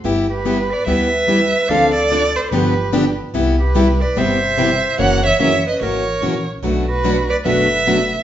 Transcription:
X:1
M:4/4
L:1/8
Q:"Swing" 1/4=146
K:G
V:1 name="Violin"
z B2 d e4 | =f d2 c B3 z | z B2 d e4 | f e e _e ^c3 z |
z B2 d e4 |]
V:2 name="Clarinet"
z G2 B B4 | d A2 A G3 z | z G2 B c4 | ^c c c B ^A3 z |
z F2 B B4 |]
V:3 name="Steel-string acoustic guitar"
[G,B,EG] z [G,B,EG] z [G,B,EG] z [G,B,EG] z | [D,=F,CDA] z [D,F,CDA] z [D,F,B,DG] z [D,F,B,DG] z | [C,G,B,EG] z [C,G,B,EG] z [C,G,B,EG] z [C,G,B,EG] z | [F,^CE^A] z [F,CEA] z [F,CEA] z [F,CEA] z |
[B,,F,A,DFB] z [B,,F,A,DFB] z [B,,F,A,DFB] z [B,,F,A,DFB] z |]
V:4 name="Steel-string acoustic guitar"
[G,B,EG] z [G,B,EG] z [G,B,EG] z [G,B,EG] z | [D,=F,CDA] z [D,F,CDA] z [D,F,B,DG] z [D,F,B,DG] z | [C,G,B,EG] z [C,G,B,EG] z [C,G,B,EG] z [C,G,B,EG] z | [^C,E,^A,^CF] z [C,E,A,CF] z [C,E,A,CF] z [C,E,A,CF] z |
[B,,F,A,DF] z [B,,F,A,DF] z [B,,F,A,DF] z [B,,F,A,DF] z |]
V:5 name="Upright bass" clef=bass
G,,,4 D,,4 | D,,4 G,,,4 | C,,4 G,,,4 | F,,,2 F,,,2 _A,,,2 ^A,,,2 |
B,,,4 F,,,4 |]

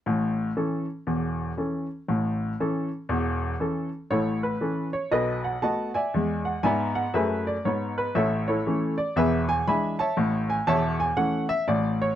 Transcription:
X:1
M:4/4
L:1/8
Q:"Swing" 1/4=119
K:A
V:1 name="Upright piano"
z8 | z8 | [EAc] B2 c [AB^d] f [dfa] [=deg]- | [deg] f [deg] f [GBe] d c B |
[Ace] [EAc]2 d [GBe] g [egb] [cea]- | [cea] g [cea] g f e d c |]
V:2 name="Upright piano" clef=bass
[A,,,A,,]2 [E,CA]2 [E,,,E,,]2 [E,CA]2 | [A,,,A,,]2 [E,CA]2 [E,,,E,,]2 [E,CA]2 | [A,,,A,,]2 [E,CA]2 [B,,,B,,]2 [A,B,F]2 | [E,,G,]2 [G,,B,]2 [F,,A,]2 [G,,B,]2 |
[A,,,A,,]2 [E,A,C]2 [E,,,E,,]2 [E,G,D]2 | [A,,,A,,]2 [E,,,E,,]2 [E,A,C]2 [A,,,A,,]2 |]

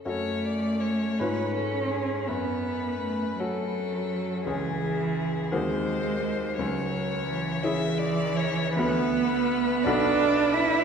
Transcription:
X:1
M:6/8
L:1/8
Q:3/8=56
K:F#m
V:1 name="Violin"
c d c B A G | B3 A3 | G3 ^B3 | c3 e d c |
B6 |]
V:2 name="Grand piano"
[F,,CFA]3 [G,,C^EB]3 | F,,3 [CFA]3 | [C,,CG]3 [^D,,^B,FG]3 | C,,3 [CEG]3 |
[D,,B,FB]3 [B,,,B,FA]3 |]
V:3 name="Cello"
A,3 C3 | B,2 A, F,3 | E,3 G,3 | F,2 E, E,3 |
B,3 D2 E |]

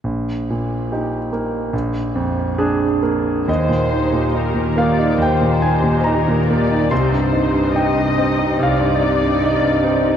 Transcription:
X:1
M:4/4
L:1/16
Q:1/4=71
K:Eb
V:1 name="Violin section"
z16 | c4 B2 d2 c4 B2 d2 | c4 e4 d8 |]
V:2 name="Viola section"
z16 | z2 [EG]4 [EG]4 [EG]4 [EG]2 | [EG]2 [EG]4 [EG]4 [EG]4 [EG]2 |]
V:3 name="Grand piano"
z16 | e6 f2 g2 a2 b4 | c'4 g4 f4 e4 |]
V:4 name="Grand piano"
B,,,2 B,,2 [EG]2 B,2 B,,,2 F,,2 [DA]2 B,2 | E,, B,, E B,, E B,, B, E E,, B,, E B,, E B,, B, E | C,, G,, E G,, E G,, C E C,, G,, E G,, E G,, C E |]
V:5 name="Cello section" clef=bass
z16 | E,4 E,4 E,4 E,4 | C,4 C,4 C,4 C,4 |]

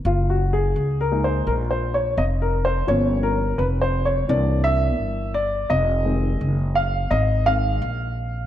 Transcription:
X:1
M:4/4
L:1/8
Q:"Swing 16ths" 1/4=85
K:Gblyd
V:1 name="Upright piano"
(3F G A- (3A B c (3B c d (3e B c | d B (3_c =c d =d =e2 d | e3 f e f3 |]
V:2 name="Upright piano"
z3 [A,B,E] z4 | [F,B,D] z3 [=E,B,=D]3 z | z [E,A,C] z3 [E,A,C] z2 |]
V:3 name="Upright bass" clef=bass
G,,,2 D,,2 B,,,2 F,,,2 | =G,,,2 F,,,2 C,,2 G,,,2 | F,,,2 G,,,2 A,,,2 B,,,2 |]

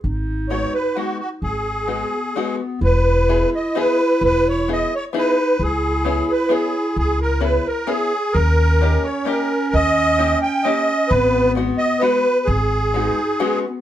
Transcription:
X:1
M:3/4
L:1/8
Q:1/4=130
K:G#m
V:1 name="Accordion"
z2 c B F F | G4- G z | B3 d B2 | B c d c B2 |
G3 B G2 | G A B A G2 | A3 c A2 | d3 =g d2 |
B2 z d B2 | G4- G z |]
V:2 name="Five-string banjo"
z2 [G,B,DF] z [G,B,DF] z | z2 [G,B,DF] z [G,B,DF] z | z2 [B,DEG] z [B,DEG] z | z2 [B,DEG] z [B,DEG] z |
z2 [B,CEG] z [B,CEG] z | z2 [B,CEG] z [B,CEG] z | z2 [A,CD=G] z [A,CDG] z | z2 [A,CD=G] z [A,CDG] z |
z2 [G,B,DF] z [G,B,DF] z | z2 [G,B,DF] z [G,B,DF] z |]
V:3 name="Clarinet"
D6- | D z B,2 B,2 | E6- | E4 D2 |
E6- | E4- E z | C6- | C6 |
B,6- | B, z D2 C B, |]
V:4 name="Upright bass" clef=bass
G,,,4 z2 | G,,,4 z2 | E,,,4 z2 | E,,,4 z2 |
C,,4 z2 | C,,4 z2 | D,,4 z2 | D,,4 z2 |
G,,,4 z2 | G,,,4 z2 |]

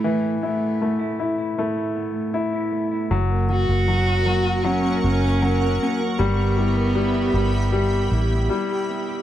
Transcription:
X:1
M:4/4
L:1/16
Q:1/4=78
K:Amix
V:1 name="Ambient pad"
z16 | [^Afc']16 | [Geb]16 |]
V:2 name="Cello"
A,2 A,4 z8 z2 | z2 F6 C2 C4 C2 | B,12 z4 |]
V:3 name="Clean electric guitar"
[A,,A,B,E] A, B, A, B, E A, E [A,,E] A, B, A, B, E A, E | [F,,F] ^A, C A, C F A, F [F,,F] A, C A, C F A, F | [G,G] B, E B, E G B, G [G,G] B, E B, E G B, G |]
V:4 name="Grand piano" clef=bass
[E,E]2 E2 A,2 E2 A,4 E4 | F,2 F,2 F,2 F,2 F,4 F,4 | G,2 G,2 G,2 G,2 G,4 G,4 |]
V:5 name="Fingered electric bass" clef=bass
z16 | F,,,3 F,,,6- F,,, F,,,4 z2 | G,,,6 G,,,4 A,,,2 z4 |]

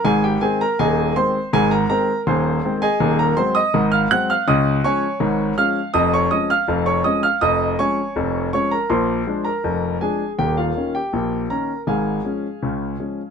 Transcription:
X:1
M:2/4
L:1/16
Q:1/4=81
K:Ab
V:1 name="Grand piano"
[Aa] [Gg] [Aa] [Bb] [Aea]2 [cc']2 | [Aa] [Bb] [Bb]2 [cac']3 [Aea]- | [K:Db] [Aea] [Bb] [cc'] [ee']2 [ff'] [gg'] [ff'] | [ee']2 [dad']4 [ff']2 |
[ee'] [dd'] [ee'] [ff']2 [dd'] [ee'] [ff'] | [ee']2 [dad']4 [dd'] [Bb] | [cc']3 [Bb]3 [Aa]2 | [=G=g] [Ff]2 [Gg]3 [Bb]2 |
[Afa]8 |]
V:2 name="Grand piano" clef=bass
[A,,,A,,]2 [E,A,C]2 [E,,,E,,]2 [E,A,C]2 | [A,,,A,,]2 [E,A,C]2 [E,,,E,,]2 [E,A,C]2 | [K:Db] [E,,,E,,]2 [G,A,C]2 [A,,,A,,]2 [G,A,C]2 | [D,,D,]2 [F,A,D]2 [A,,,A,,]2 [F,A,D]2 |
[F,,,F,,]2 [F,A,D]2 [F,,,F,,]2 [F,A,D]2 | [F,,,F,,]2 [F,A,D]2 [F,,,F,,]2 [F,A,D]2 | [B,,,B,,]2 [F,A,=D]2 [F,,,F,,]2 [F,A,D]2 | [E,,,E,,]2 [E,B,D]2 [B,,,B,,]2 [E,B,D]2 |
[A,,,A,,]2 [F,A,D]2 [D,,D,]2 [F,A,D]2 |]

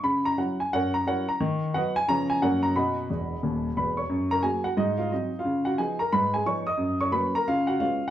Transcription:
X:1
M:4/4
L:1/16
Q:"Swing" 1/4=178
K:B
V:1 name="Upright piano"
b2 a2 f2 g2 [Acf]2 a2 [Acf]2 a2 | z4 [Bdf]2 g2 a2 g2 [Acf]2 a2 | [dfb]12 [Bb]2 [cc']2- | [K:F#] [cc']2 [Aa]2 [Gg]2 [Ff]2 [Dd]2 [Ee]2 [Dd]3 [Ee]- |
[Ee]2 [Ff]2 [Gg]2 [Aa]2 [Bb]2 [Gg]2 [cc']2 [dd']2- | [dd']2 [cc']2 [Bb]2 [Aa]2 [Ee]2 [Ff]2 [Ee]3 z |]
V:2 name="Upright piano" clef=bass
C,4 [F,CE]4 F,,4 [F,CE]4 | D,4 [F,B,F]4 [C,^E,B,C]4 [F,,F,A,C]4 | B,,4 [E,,,E,,]4 [D,,,D,,]4 [E,,,E,,]4 | [K:F#] F,,4 [F,A,F]4 G,,4 [F,^B,]4 |
C,4 [E,B,D]4 G,,4 [E,B,D]4 | F,,4 [F,A,C]4 C,4 [G,B,C]4 |]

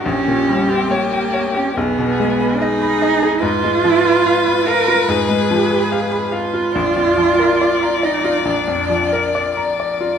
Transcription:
X:1
M:4/4
L:1/16
Q:1/4=71
K:G#dor
V:1 name="Violin"
=G8 ^G4 G4 | [K:Bbphr] c16 | =d16 |]
V:2 name="Grand piano"
_B,,, _B,, =G, =G _d =g d G =B,,, =B,, ^G, B ^d b d ^G | [K:Bbphr] A,, A, F, c f c' f F A,, A, F, c f c' f F | B,,, F,, F, B =d b d F B,,, F,, F, B d b d F |]
V:3 name="Cello"
_D3 ^B, _B,3 D =B,4 ^D4 | [K:Bbphr] F6 B2 A6 F2- | F6 E2 =D4 z4 |]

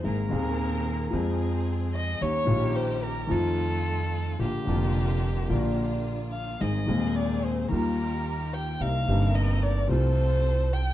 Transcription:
X:1
M:4/4
L:1/16
Q:1/4=110
K:Eb
V:1 name="Violin"
B12 z2 e2 | _d4 c2 B2 =A8 | G12 z2 f2 | e4 d2 c2 B6 g2 |
f4 e2 d2 c6 g2 |]
V:2 name="Vibraphone"
z16 | z16 | z4 B4 d4- d z3 | z16 |
z16 |]
V:3 name="String section"
[CAB]2 [CAB]6 [CFA]8 | [_DEG]2 [DEG]6 [=A,EF]8 | [B,DF]2 [B,DF]6 [B,DF]8 | [CEA]2 [CEA]6 [EFG]8 |
[CEB]2 [CEB]6 [CF=A]8 |]
V:4 name="Grand piano" clef=bass
[A,,,A,,E,B,CA]2 [E,,,E,,E,B,CA]6 [F,,F,A,CA]8 | [E,,E,B,_DG]2 [B,,,B,,E,B,DG]6 [F,,E,F,=A,CF]8 | [B,,,B,,D,F,B,F]2 [F,,,F,,D,F,B,F]6 [B,,,B,,D,F,B,F]8 | [A,,,A,,E,A,CA]2 [E,,,E,,E,A,CA]6 [E,,E,G,B,F]8 |
[C,,C,G,B,E]2 [G,,,G,,C,G,B,E]6 [C,,C,F,=A,F]8 |]
V:5 name="Upright bass" clef=bass
A,,,2 E,,6 F,,8 | E,,2 B,,,6 F,,8 | B,,,2 F,,,6 B,,,8 | A,,,2 E,,6 E,,8 |
C,,2 G,,,6 C,,8 |]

